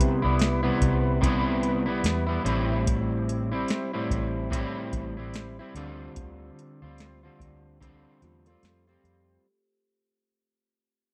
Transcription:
0.00 0.23 C3 medium
0.00 0.23 G3 medium
0.00 0.23 B3 medium
0.00 0.21 E4 medium
0.00 closed hi-hat medium
0.22 0.70 C2 medium
0.22 0.64 G3 soft
0.22 0.62 B3 soft
0.22 0.62 E4 medium
0.39 snare medium
0.39 closed hi-hat medium
0.63 1.20 C3 medium
0.63 1.20 G3 medium
0.63 1.22 B3 medium
0.63 1.21 E4 medium
0.81 2.00 C2 medium
0.81 kick medium
0.81 closed hi-hat medium
1.21 1.87 C3 medium
1.21 1.88 G3 medium
1.21 1.87 B3 medium
1.21 1.85 E4 loud
1.21 kick medium
1.21 closed hi-hat medium
1.63 closed hi-hat medium
1.86 2.29 G3 soft
1.86 2.27 B3 medium
1.86 2.25 E4 medium
2.04 2.37 E2 medium
2.04 snare medium
2.04 closed hi-hat medium
2.27 2.43 G3 soft
2.27 2.45 B3 medium
2.27 2.44 E4 medium
2.44 3.63 A1 medium
2.44 3.51 A2 medium
2.44 3.54 G3 medium
2.44 3.52 C4 medium
2.44 3.51 E4 medium
2.44 closed hi-hat medium
2.87 kick medium
2.87 closed hi-hat medium
3.29 closed hi-hat medium
3.52 3.93 G3 soft
3.52 3.93 C4 medium
3.52 3.92 E4 medium
3.68 snare medium
3.68 closed hi-hat medium
3.93 4.49 A2 medium
3.93 4.50 G3 medium
3.93 4.51 C4 medium
3.93 4.51 E4 medium
4.10 4.63 A1 medium
4.10 kick medium
4.10 closed hi-hat medium
4.50 5.16 A2 medium
4.50 5.17 G3 medium
4.50 5.17 C4 medium
4.50 5.16 E4 medium
4.50 kick medium
4.50 closed hi-hat medium
4.93 5.58 A1 medium
4.93 kick medium
4.93 closed hi-hat medium
5.17 5.59 G3 soft
5.17 5.59 C4 medium
5.17 5.58 E4 soft
5.34 snare loud
5.34 closed hi-hat medium
5.59 5.75 G3 soft
5.59 5.76 C4 medium
5.59 5.75 E4 medium
5.75 6.07 D2 medium
5.75 6.87 D3 medium
5.75 6.84 G3 medium
5.75 6.83 C4 medium
5.75 6.82 F4 medium
5.75 closed hi-hat medium
6.16 6.49 D2 medium
6.16 kick loud
6.16 closed hi-hat medium
6.59 closed hi-hat medium
6.82 7.28 D2 medium
6.82 7.24 G3 soft
6.82 7.23 C4 soft
6.82 7.22 F4 medium
6.98 snare medium
6.98 closed hi-hat medium
7.23 7.79 D3 medium
7.23 7.80 G3 medium
7.23 7.81 C4 medium
7.23 7.80 F4 medium
7.40 8.05 D2 medium
7.40 kick medium
7.40 closed hi-hat medium
7.81 8.46 D3 medium
7.81 8.46 G3 medium
7.81 8.47 C4 medium
7.81 8.46 F4 medium
7.81 kick medium
7.81 closed hi-hat medium
8.22 8.55 E2 medium
8.22 8.46 A3 medium
8.22 8.45 F4 medium
8.22 snare soft
8.22 closed hi-hat medium
8.46 8.86 C4 medium
8.46 8.88 C4 soft
8.46 8.86 F4 medium
8.46 8.85 A4 medium
8.46 closed hi-hat soft
8.51 8.89 G3 soft
8.63 8.95 F2 medium
8.63 snare medium
8.63 closed hi-hat medium
8.87 9.46 G3 soft
8.87 9.45 C4 medium
8.87 9.45 F4 medium
8.87 9.43 G4 medium
9.04 9.36 F2 medium
9.04 closed hi-hat medium

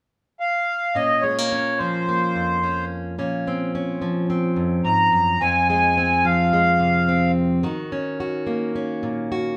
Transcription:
0.40 0.97 F5 medium
0.95 2.34 A#2 soft
0.95 1.52 C#4 soft
0.95 1.23 D#5 medium
1.21 1.38 G#3 soft
1.21 1.79 C#5 medium
1.38 2.07 A#3 soft
1.52 2.62 C#4 soft
1.78 4.01 F3 soft
1.78 2.85 C5 medium
2.08 3.15 A#3 soft
2.35 3.18 F2 soft
2.63 3.15 C#4 soft
3.18 4.57 A#2 medium
3.18 3.74 C#4 soft
3.47 4.29 C4 soft
3.75 5.38 C#4 soft
4.02 5.37 F3 soft
4.30 5.37 C4 soft
4.56 4.84 F2 soft
4.84 5.12 G#2 soft
4.84 5.42 A#5 medium
5.12 5.40 F#2 soft
5.41 7.63 F2 medium
5.41 5.96 C4 soft
5.41 5.68 G#5 medium
5.69 6.52 G#3 soft
5.69 6.26 G#5 medium
5.97 7.07 C4 soft
6.25 7.60 F3 soft
6.25 7.32 F5 medium
6.53 7.64 G#3 soft
6.79 7.60 C3 medium
7.09 7.64 C4 soft
7.63 9.57 D#3 medium
7.63 8.19 F#4 medium
7.92 8.74 C#4 soft
8.20 9.31 F#4 medium
8.47 9.57 A#3 soft
8.75 9.57 C#4 soft
9.03 9.57 A#2 soft
9.32 9.57 F#4 medium

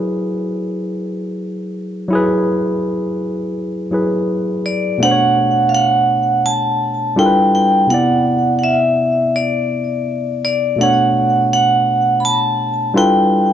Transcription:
0.00 2.05 F#3 medium
0.00 2.06 E4 medium
0.00 2.08 G#4 medium
0.00 2.12 B4 medium
2.08 3.86 F#3 medium
2.08 3.88 E4 medium
2.13 3.89 G#4 medium
2.13 3.90 B4 loud
3.91 4.99 F#3 medium
3.91 5.00 E4 soft
3.91 5.01 G#4 medium
3.91 5.01 B4 medium
4.66 5.02 D5 medium
4.98 7.12 B2 medium
4.98 7.13 A3 medium
5.03 7.14 D4 medium
5.03 5.10 C5 medium
5.03 5.70 F#5 loud
5.11 7.18 C#5 medium
5.69 5.73 F5 medium
5.74 6.47 F#5 medium
6.46 7.13 A5 medium
7.16 7.89 G3 medium
7.16 7.89 D4 medium
7.16 7.89 E4 medium
7.16 7.90 F4 medium
7.16 7.90 A4 medium
7.16 7.26 A#4 medium
7.16 7.54 G5 loud
7.26 7.93 B4 medium
7.55 7.91 G5 medium
7.87 10.73 C3 medium
7.87 10.74 B3 medium
7.87 8.53 F#5 loud
7.92 10.75 E4 medium
7.92 10.77 D5 medium
8.59 8.62 F#5 medium
8.64 9.37 E5 medium
9.36 10.43 D5 medium
10.45 10.80 D5 medium
10.76 12.90 B2 medium
10.76 12.91 A3 medium
10.81 12.92 D4 medium
10.81 12.93 C#5 medium
10.81 11.52 F#5 loud
11.53 12.21 F#5 loud
12.20 12.24 B5 medium
12.25 12.98 A5 medium
12.94 13.53 G3 medium
12.94 13.53 D4 medium
12.94 13.53 E4 medium
12.94 13.53 F4 medium
12.94 13.53 A4 medium
12.94 13.53 B4 medium
12.94 13.53 G5 medium

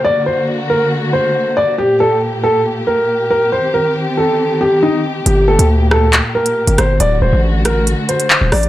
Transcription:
0.00 3.48 A#3 medium
0.04 1.77 D3 medium
0.04 1.77 F#4 medium
0.04 0.21 D5 medium
0.26 0.43 C5 medium
0.70 0.86 A#4 medium
1.13 1.54 C5 medium
1.57 1.73 D5 medium
1.78 3.50 A#2 medium
1.78 6.96 G4 medium
1.78 1.95 G4 medium
2.00 2.16 A4 medium
2.44 2.60 A4 medium
2.87 3.28 A#4 medium
3.31 3.47 A#4 medium
3.52 5.24 D#3 medium
3.52 5.24 C4 medium
3.52 3.69 C5 medium
3.74 3.90 A#4 medium
4.17 4.58 A4 medium
4.61 4.77 G4 medium
4.83 4.99 D#4 medium
5.26 5.57 G1 loud
5.26 6.98 A#2 medium
5.26 6.98 A#3 medium
5.26 5.42 G4 medium
5.26 closed hi-hat medium
5.48 5.64 A4 medium
5.59 6.21 D2 loud
5.59 closed hi-hat medium
5.91 6.08 A4 medium
5.91 cross-stick loud
6.13 clap loud
6.13 closed hi-hat medium
6.35 6.76 A#4 medium
6.46 closed hi-hat medium
6.67 6.78 G1 loud
6.67 closed hi-hat medium
6.78 6.99 G1 loud
6.78 6.95 C5 medium
6.78 cross-stick loud
6.78 closed hi-hat medium
7.00 7.21 D1 loud
7.00 8.69 D3 medium
7.00 8.69 A3 medium
7.00 8.69 F#4 medium
7.00 7.16 D5 medium
7.00 closed hi-hat medium
7.22 7.32 D1 loud
7.22 7.38 C5 medium
7.33 7.95 A1 loud
7.65 7.82 A#4 medium
7.65 cross-stick loud
7.65 closed hi-hat medium
7.87 closed hi-hat medium
8.09 8.50 C5 medium
8.09 closed hi-hat medium
8.20 closed hi-hat medium
8.30 clap loud
8.41 8.52 D1 loud
8.52 8.69 A1 loud
8.52 8.69 D5 medium
8.52 cross-stick loud
8.52 open hi-hat medium
8.63 closed hi-hat medium

